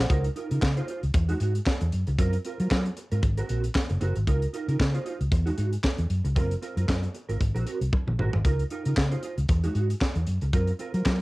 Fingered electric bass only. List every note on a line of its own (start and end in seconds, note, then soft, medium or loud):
0.10 0.28 C#2 loud
0.51 0.59 C#3 medium
0.62 0.80 C#3 loud
1.03 1.11 C#2 medium
1.14 1.32 E2 loud
1.41 1.58 G#2 medium
1.81 1.89 E2 medium
1.93 2.03 F#2 medium
2.07 2.15 C#2 medium
2.19 2.36 F#2 loud
2.60 2.68 F#3 medium
2.71 2.89 F#3 loud
3.12 3.20 G#2 medium
3.23 3.41 G#1 medium
3.50 3.67 A#1 medium
3.90 3.98 F#1 medium
4.02 4.12 F#1 medium
4.16 4.24 G#1 medium
4.28 4.45 C#2 loud
4.68 4.76 C#3 medium
4.80 4.98 C#3 loud
5.21 5.28 C#2 medium
5.32 5.50 E2 medium
5.58 5.76 G#2 medium
5.98 6.06 E2 medium
6.10 6.20 F#2 medium
6.24 6.38 C#2 medium
6.36 6.54 F#1 loud
6.77 6.85 F#2 medium
6.89 7.06 F#2 loud
7.29 7.37 G#1 medium
7.41 7.51 G#1 medium
7.55 7.63 A#1 medium
7.81 7.89 C2 medium
8.07 8.15 A#1 medium
8.19 8.29 G#1 medium
8.34 8.41 G#1 medium
8.45 8.63 C#2 loud
8.86 8.94 C#3 medium
8.97 9.15 C#3 loud
9.38 9.46 C#2 medium
9.49 9.67 E2 loud
9.75 9.93 G#2 medium
10.16 10.24 E2 medium
10.27 10.37 F#2 medium
10.42 10.50 C#2 medium
10.53 10.71 F#2 loud
10.94 11.02 F#3 medium
11.06 11.22 F#3 medium